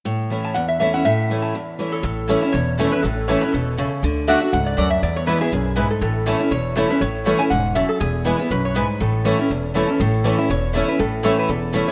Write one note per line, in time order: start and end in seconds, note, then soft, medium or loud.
0.05 0.53 A2 medium
0.30 0.54 E3 medium
0.30 0.54 A3 medium
0.30 0.55 C#4 medium
0.30 0.55 E4 medium
0.44 0.49 A5 medium
0.54 1.03 E2 medium
0.54 0.68 F#5 medium
0.68 0.79 E5 medium
0.80 0.93 E3 medium
0.80 0.93 A3 medium
0.80 0.94 C#4 medium
0.80 0.92 E4 medium
0.80 0.94 E5 medium
0.94 1.05 C#4 soft
0.94 1.04 E4 medium
0.94 1.04 F#5 medium
1.05 1.52 A2 medium
1.05 1.41 E5 medium
1.30 1.53 E3 medium
1.30 1.54 A3 medium
1.30 1.54 C#4 medium
1.30 1.54 E4 medium
1.42 1.89 A5 medium
1.55 2.02 E2 medium
1.79 2.03 E3 medium
1.79 2.03 A3 medium
1.79 2.03 C#4 medium
1.79 2.04 E4 medium
1.92 2.03 A4 medium
2.03 2.34 A1 loud
2.03 2.51 A2 medium
2.03 2.55 A4 medium
2.28 2.42 E3 medium
2.28 2.38 A3 medium
2.28 2.42 A3 medium
2.28 2.43 C#4 medium
2.28 2.39 E4 medium
2.28 2.41 E4 medium
2.28 2.39 C#5 loud
2.28 2.39 A5 medium
2.42 2.54 C#4 soft
2.42 2.53 E4 medium
2.52 2.85 E1 medium
2.52 3.01 E2 medium
2.52 2.91 C#5 medium
2.78 2.92 E3 medium
2.78 2.88 A3 medium
2.78 2.92 A3 loud
2.78 2.93 C#4 medium
2.78 2.89 E4 medium
2.78 2.92 E4 loud
2.78 2.89 C#5 loud
2.78 2.89 A5 loud
2.92 3.04 C#4 soft
2.92 3.03 E4 medium
2.92 3.02 B4 medium
3.03 3.34 A1 loud
3.03 3.52 A2 medium
3.03 3.29 A4 medium
3.28 3.42 E3 medium
3.28 3.38 A3 medium
3.28 3.42 A3 medium
3.28 3.43 C#4 medium
3.28 3.38 E4 medium
3.28 3.42 E4 medium
3.28 3.41 C#5 loud
3.28 3.39 C#5 loud
3.28 3.39 A5 loud
3.41 3.54 C#4 soft
3.41 3.53 E4 medium
3.41 3.52 B4 medium
3.52 3.84 E1 medium
3.52 3.78 B2 medium
3.52 3.91 A4 medium
3.78 4.02 C#3 medium
3.78 3.88 A3 medium
3.78 3.88 E4 medium
3.78 3.88 C#5 medium
3.78 3.88 A5 medium
4.03 4.34 D2 loud
4.03 4.26 D3 medium
4.28 4.41 D3 medium
4.28 4.38 A3 loud
4.28 4.41 A3 medium
4.28 4.42 D4 medium
4.28 4.38 F#4 loud
4.28 4.40 F#4 loud
4.28 4.38 D5 medium
4.28 4.51 E5 loud
4.28 4.38 F#5 loud
4.42 4.53 D4 medium
4.42 4.52 F#4 medium
4.53 4.74 C#2 medium
4.53 4.77 G#2 medium
4.53 4.67 F#5 medium
4.66 4.90 D5 medium
4.77 4.99 D2 medium
4.77 5.02 F#2 medium
4.77 4.87 A3 medium
4.77 4.87 F#4 medium
4.77 4.88 D5 loud
4.77 4.88 F#5 loud
4.90 5.01 E5 loud
5.03 5.33 E2 medium
5.03 5.50 E2 medium
5.03 5.16 D5 medium
5.16 5.26 C#5 medium
5.26 5.40 E3 medium
5.26 5.41 G#3 medium
5.26 5.37 B3 medium
5.26 5.41 B3 medium
5.26 5.37 E4 medium
5.26 5.40 E4 medium
5.26 5.40 B4 loud
5.26 5.37 B4 loud
5.26 5.37 G#5 medium
5.41 5.53 B3 medium
5.41 5.52 E4 medium
5.41 5.87 G#4 medium
5.53 5.83 B1 medium
5.53 5.76 F#2 medium
5.76 6.00 G#2 medium
5.76 5.86 B3 medium
5.76 5.87 E4 medium
5.76 5.87 B4 medium
5.76 5.87 G#5 medium
5.90 6.01 A4 medium
6.01 6.32 A1 loud
6.01 6.49 A2 medium
6.01 6.48 A4 medium
6.26 6.40 E3 medium
6.26 6.36 A3 medium
6.26 6.40 A3 medium
6.26 6.40 C#4 medium
6.26 6.36 E4 medium
6.26 6.39 E4 medium
6.26 6.37 C#5 loud
6.26 6.37 A5 loud
6.40 6.52 C#4 soft
6.40 6.51 E4 medium
6.51 6.82 E1 medium
6.51 6.99 E2 medium
6.51 6.87 C#5 medium
6.75 6.89 E3 medium
6.75 6.86 A3 medium
6.75 6.90 A3 medium
6.75 6.90 C#4 medium
6.75 6.86 E4 medium
6.75 6.89 E4 loud
6.75 6.86 C#5 medium
6.75 6.87 A5 medium
6.90 7.02 C#4 soft
6.90 7.01 E4 medium
6.90 7.01 B4 medium
7.01 7.32 A1 medium
7.01 7.49 A2 medium
7.01 7.37 C#5 loud
7.25 7.39 E3 medium
7.25 7.36 A3 medium
7.25 7.40 A3 medium
7.25 7.40 C#4 medium
7.25 7.36 E4 loud
7.25 7.39 E4 medium
7.25 7.36 C#5 medium
7.25 7.36 A5 medium
7.39 7.52 C#4 medium
7.39 7.50 E4 medium
7.39 7.44 G#5 loud
7.50 7.81 E1 medium
7.50 7.75 G#2 medium
7.50 7.75 F#5 medium
7.75 8.00 F#2 medium
7.75 7.85 A3 medium
7.75 7.86 E4 medium
7.75 7.86 C#5 loud
7.75 7.90 E5 medium
7.75 7.86 A5 medium
7.89 8.00 A4 medium
8.00 8.31 E1 medium
8.00 8.48 E2 medium
8.00 8.47 G#4 medium
8.25 8.38 E3 medium
8.25 8.39 G#3 medium
8.25 8.35 B3 medium
8.25 8.39 B3 medium
8.25 8.35 E4 medium
8.25 8.38 E4 medium
8.25 8.36 B4 medium
8.25 8.36 G#5 loud
8.39 8.51 B3 medium
8.39 8.50 E4 medium
8.51 8.81 B1 medium
8.51 8.74 F#2 medium
8.51 8.64 B4 medium
8.65 8.75 C#5 medium
8.75 8.99 G#2 loud
8.75 8.85 B3 medium
8.75 8.85 E4 medium
8.75 8.85 B4 medium
8.75 8.99 B4 medium
8.75 8.86 G#5 medium
9.00 9.31 A1 loud
9.00 9.48 A2 medium
9.00 9.71 A4 medium
9.25 9.38 E3 medium
9.25 9.35 A3 medium
9.25 9.38 A3 medium
9.25 9.39 C#4 medium
9.25 9.35 E4 loud
9.25 9.38 E4 medium
9.25 9.35 C#5 loud
9.25 9.35 A5 medium
9.39 9.50 C#4 soft
9.39 9.49 E4 medium
9.50 9.81 E1 medium
9.50 9.98 E2 medium
9.74 9.88 E3 medium
9.74 9.84 A3 medium
9.74 9.88 A3 medium
9.74 9.89 C#4 medium
9.74 9.85 E4 medium
9.74 9.87 E4 loud
9.74 9.85 C#5 medium
9.74 9.85 A5 medium
9.88 10.00 C#4 soft
9.88 9.99 E4 soft
9.88 9.99 A4 medium
10.00 10.30 A1 loud
10.00 10.47 A2 medium
10.00 10.46 A4 medium
10.24 10.38 E3 medium
10.24 10.34 A3 loud
10.24 10.38 A3 medium
10.24 10.38 C#4 medium
10.24 10.34 E4 medium
10.24 10.37 E4 medium
10.24 10.35 C#5 loud
10.24 10.35 A5 loud
10.38 10.50 C#4 medium
10.38 10.49 E4 medium
10.49 10.80 E1 medium
10.49 10.97 E2 medium
10.49 10.86 C#5 medium
10.73 10.88 E3 medium
10.73 10.84 A3 medium
10.73 10.88 A3 loud
10.73 10.88 C#4 loud
10.73 10.84 E4 medium
10.73 10.87 E4 loud
10.73 10.84 C#5 medium
10.73 10.84 A5 medium
10.88 11.00 C#4 soft
10.88 10.99 E4 medium
10.88 10.99 B4 medium
10.99 11.30 A1 medium
10.99 11.47 A2 medium
10.99 11.25 A4 medium
11.23 11.47 E3 medium
11.23 11.33 A3 medium
11.23 11.48 A3 medium
11.23 11.48 C#4 medium
11.23 11.33 E4 loud
11.23 11.48 E4 medium
11.23 11.34 C#5 loud
11.23 11.38 C#5 medium
11.23 11.34 A5 loud
11.39 11.49 B4 medium
11.49 11.79 E1 medium
11.49 11.92 E2 medium
11.49 11.89 A4 medium
11.73 11.87 E3 medium
11.73 11.83 A3 medium
11.73 11.87 A3 loud
11.73 11.88 C#4 medium
11.73 11.83 E4 medium
11.73 11.87 E4 loud
11.73 11.83 C#5 medium
11.73 11.84 A5 medium
11.88 11.92 E4 medium
11.88 11.92 C#5 medium